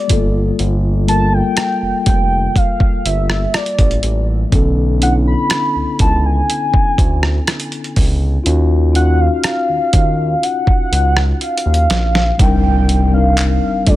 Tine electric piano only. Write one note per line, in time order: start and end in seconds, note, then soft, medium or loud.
0.08 0.87 G3 medium
0.08 0.16 A3 medium
0.08 0.89 F4 medium
0.12 0.91 A#3 medium
0.12 0.90 A4 medium
1.06 2.46 G3 medium
1.06 2.47 A#3 medium
1.06 2.48 F4 medium
1.11 2.49 A#4 medium
4.50 4.86 D3 medium
4.50 4.87 B3 medium
4.50 4.88 C#4 medium
4.55 4.89 A4 medium
4.99 6.40 B3 medium
4.99 6.41 C#4 medium
4.99 6.40 D4 medium
5.04 6.42 E4 medium
8.44 8.80 C#4 medium
8.44 8.81 D#4 medium
8.44 8.80 F4 medium
8.49 8.82 F#4 medium
8.93 10.34 C#4 medium
8.93 10.35 D#4 medium
8.93 10.33 F4 medium
8.98 10.36 F#4 medium
12.37 12.90 G3 medium
12.37 12.91 C4 medium
12.37 12.92 D4 medium
12.37 12.92 D#4 medium
12.42 12.93 A#4 medium
13.11 13.82 G3 medium
13.11 13.82 C4 medium
13.11 13.83 D4 medium
13.11 13.83 D#4 medium
13.16 13.84 A#4 medium
13.85 13.96 G3 medium
13.85 13.93 A3 medium
13.85 13.96 D4 medium
13.85 13.96 F4 medium
13.90 13.96 A#3 medium
13.90 13.96 A4 medium